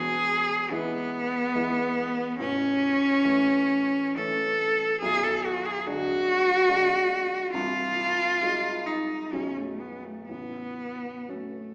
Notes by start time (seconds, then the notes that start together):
Already playing: E1 E2 G#4
0.71 E3 G#3 B3 E4
1.55 E3 G#3 E4
2.39 A0 A1 C#4
3.25 E3 A3 C#4
4.17 E3 A3 C#4 A4
5.02 B0 B1 G#4
5.23 A4
5.45 F#4
5.66 G#4
5.86 D3 G#3 D4 F#4
6.68 D3 G#3 D4
7.54 C1 C2 F4
8.42 F#3 G#3 D#4
8.86 D#4
9.33 B0 B1 F3 G#3 C#4
9.57 A3
9.80 B3
10.04 A3
10.28 A0 A1 B3
11.28 F#3 A3 C#4